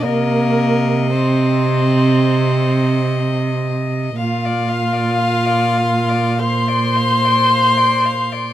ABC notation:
X:1
M:4/4
L:1/16
Q:1/4=56
K:Cm
V:1 name="Violin"
e16 | f d f d f d f d f d f d f d f d |]
V:2 name="Violin"
B4 c8- c2 z2 | f8 c'8 |]
V:3 name="Viola"
B,4 C8- C2 z2 | F8 c8 |]
V:4 name="Cello" clef=bass
C,16 | B,,16 |]